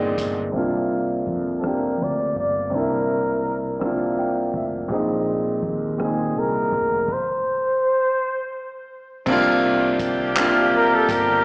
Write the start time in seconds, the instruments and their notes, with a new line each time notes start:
Already playing: fretless electric bass G1, grand piano A#2 G#3 C4 D4 D#4, horn section D#4 F4 G#4
0.18 fretless electric bass G1, kick, closed hi-hat
0.52 fretless electric bass C2, grand piano C3 A#3, kick, closed hi-hat
0.56 grand piano D4 F4
1.27 fretless electric bass F2, kick, closed hi-hat
1.59 grand piano C3, flugelhorn A4, closed hi-hat
1.63 grand piano A#3 D4 G4, flugelhorn A#4, cross-stick
2.02 fretless electric bass D2, flugelhorn D5
2.36 fretless electric bass G1, flugelhorn D5, kick, closed hi-hat
2.70 fretless electric bass C2, grand piano C3 A#3 D4, kick, closed hi-hat
2.75 grand piano E4, flugelhorn A#4
3.44 closed hi-hat
3.80 grand piano C3 A#3, cross-stick, closed hi-hat
3.84 grand piano D4 F4
4.19 grand piano G5
4.54 fretless electric bass F1, grand piano E5, kick, closed hi-hat
4.88 fretless electric bass A#1, grand piano A#2 G#3 C4, kick, closed hi-hat
4.94 grand piano D#4
5.63 fretless electric bass D#2, kick, closed hi-hat
5.98 grand piano A#2 G#3 C4, flugelhorn G#4, cross-stick, closed hi-hat
6.04 grand piano D#4
6.36 fretless electric bass C2, flugelhorn A#4
6.72 fretless electric bass F1, kick, closed hi-hat
7.08 kick, crash
7.13 flugelhorn C5
9.26 fretless electric bass C2, grand piano C3 A#3 D4, horn section A#3 D4 G4, kick, crash
9.32 grand piano F4
9.99 kick, closed hi-hat
10.35 grand piano C3 A#3 D4, clap, closed hi-hat
10.41 grand piano F4
10.76 flugelhorn A#4
10.95 flugelhorn A4
11.09 fretless electric bass G1, flugelhorn A#4, kick, closed hi-hat